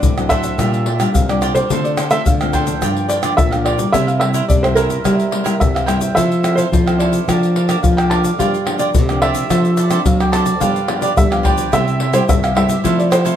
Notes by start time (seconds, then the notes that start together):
Already playing: F#3 C4 D4 D5
0.03 A2, pandeiro, shaker, surdo
0.18 F#3 C4 D4 A4 C5 F#5, pandeiro, tamborim, shaker
0.29 D4 A4 C5 E5 F#5, pandeiro, shaker, surdo
0.43 pandeiro, shaker
0.59 A#2 G3 D4 F4 A#4 D5 G5, pandeiro, tamborim, shaker, surdo
0.74 pandeiro, shaker
0.86 F4 A#4 D5 G5, pandeiro
0.99 G3 D4 F4 A#4 D5 G5, pandeiro, tamborim, shaker
1.14 A#2 C3 F5, pandeiro, shaker, surdo
1.29 G3 D4 F4 A#4 D5 G5, pandeiro, tamborim, shaker
1.41 F4 A#4 D5 G5, pandeiro, tamborim, shaker
1.55 A#4 C5 D5 G5, pandeiro, shaker
1.70 D3 A3 C4 D4 F4 A4 C5 F5, pandeiro, shaker, surdo
1.84 D5, pandeiro, shaker
1.97 D4 A4 C5 F5, pandeiro, tamborim, shaker
2.11 A3 C4 D4 F4 A4 C5 E5 F5, pandeiro, shaker
2.26 A2 D3 F5, pandeiro, shaker, surdo
2.41 A3 C4 F4 A4 C5 F5, pandeiro, tamborim, shaker
2.53 D4 A4 C5 F5 G5, pandeiro, shaker, surdo
2.67 F3 A#3 D4, pandeiro, shaker
2.82 G2 F4 A#4 D5 G5, pandeiro, tamborim, shaker, surdo
2.97 pandeiro, shaker
3.08 F4 A#4 D5 G5, pandeiro, shaker
3.23 F3 A#3 D4 F4 A#4 D5 G5, pandeiro, tamborim, shaker
3.37 A#2 D3 E5, pandeiro, shaker, surdo
3.51 F3 A#3 D4 A#4 D5 F5 G5, pandeiro, tamborim, shaker
3.64 F4 A#4 D5 G5, pandeiro, tamborim
3.78 G3 A#3 E4 A#4 D5 G5, pandeiro, shaker
3.92 C3 E4 A#4 C5 E5, pandeiro, shaker, surdo
4.07 F5, pandeiro, shaker
4.20 G3 A#3 E4 A#4 C5 E5, pandeiro, tamborim
4.34 E4 A#4 C5 E5, pandeiro, shaker
4.48 G2 C3 D5, pandeiro, shaker, surdo
4.63 G3 A#3 E4 A#4 C5 E5, pandeiro, tamborim, shaker
4.75 E4 A#4 C5 E5, pandeiro, shaker
4.90 pandeiro, shaker
5.04 C3 G3 A#3 E4 A#4 C5 E5, pandeiro, tamborim, shaker, surdo
5.20 pandeiro, shaker
5.31 G3 A#3 E4 A#4 C5 E5, pandeiro
5.44 G3 A#3 E4 A#4 C5 E5, pandeiro, tamborim, shaker
5.60 G2 C3 E5, pandeiro, shaker, surdo
5.74 A#4 C5 E5 F5, pandeiro, tamborim, shaker
5.86 G3 A#3 E4 A#4 C5 E5 G5, pandeiro, tamborim, shaker
6.01 A#4 C5 E5, pandeiro, shaker
6.15 F3 C4 E4 A4 C5 E5 F5, pandeiro, shaker, surdo
6.32 pandeiro, shaker
6.43 C4 E4 A4 C5 F5, pandeiro, tamborim, shaker
6.55 E4 A4 C5 F5, pandeiro, shaker
6.72 C3 F3, pandeiro, shaker, surdo
6.86 C4 E4 A4 C5 F5, pandeiro, tamborim, shaker
6.98 E4 A4 C5 D5 F5, pandeiro
7.13 pandeiro, shaker
7.28 F3 A#3 D4 A4 A#4 D5 F5 A5, pandeiro, tamborim, shaker, surdo
7.43 pandeiro, shaker
7.55 A#4 D5 F5 A5, pandeiro
7.68 A#3 D4 A4 A#4 D5 F5 A5, pandeiro, tamborim, shaker
7.83 F3 F5, pandeiro, shaker, surdo
7.97 D5 F5 G5 A5, pandeiro, tamborim, shaker
8.10 A#3 D4 A4 A#4 D5 F5 A5, pandeiro, tamborim
8.24 D5 F5 A5, pandeiro, shaker
8.39 G2 F3 G3 A#3 D4 F4 A#4 D5 F5 G5, pandeiro, shaker, surdo
8.54 pandeiro, shaker
8.65 F3 A#3 D4 F4 A#4 D5 G5, pandeiro, tamborim
8.79 F4 A#4 D5 G5, pandeiro, shaker
8.95 C3 D3, pandeiro, shaker, surdo
9.09 F3 A#3 D4 A#4 D5 G5, pandeiro, tamborim, shaker
9.22 F4 A#4 D5 E5 G5, pandeiro
9.35 pandeiro, shaker
9.50 F3 C4 D4 F4 A4 C5 D5, pandeiro, tamborim, shaker, surdo
9.65 pandeiro, shaker
9.77 F4 A4 C5 D5, pandeiro, shaker
9.90 C4 D4 F4 A4 C5 D5, pandeiro, tamborim, shaker
10.06 F#3 F5, pandeiro, shaker, surdo
10.20 A4 C5 D5 G5, pandeiro, tamborim, shaker
10.32 C4 D4 F4 A4 C5 D5 A5, pandeiro, tamborim, shaker
10.46 A4 C5 D5, pandeiro, shaker
10.60 G2 F3 G3 B3 D4 F4 G4 B4 D5 F5, pandeiro, shaker, surdo
10.76 pandeiro, shaker
10.88 F3 B3 D4 F4 G4 B4 D5, pandeiro, tamborim
11.01 F4 G4 B4 D5, pandeiro, shaker
11.17 D3 F3 G3 B3 D4 E5, pandeiro, shaker, surdo
11.30 F3 B3 D4 G4 B4 D5 F5, pandeiro, tamborim, shaker
11.43 F4 G4 B4 D5 G5, pandeiro, surdo
11.58 pandeiro, shaker
11.72 C3 G3 C4 E4 G4 C5 E5, pandeiro, tamborim, shaker, surdo
11.88 pandeiro, shaker
12.00 E4 G4 C5 E5, pandeiro
12.13 G3 C4 E4 G4 C5 E5, pandeiro, tamborim, shaker
12.28 G2 C3 E5, pandeiro, shaker, surdo
12.43 G4 C5 E5 F5, pandeiro, tamborim, shaker
12.55 G3 C4 E4 G4 C5 E5, pandeiro, tamborim
12.69 G4 C5 E5, pandeiro, shaker
12.84 F3 A3 C4 E4 A4 C5 F5, pandeiro, shaker, surdo
12.99 D5, pandeiro, shaker
13.10 E4 A4 C5 F5, pandeiro, tamborim, shaker
13.25 A3 C4 E4 A4 C5 F5, pandeiro, shaker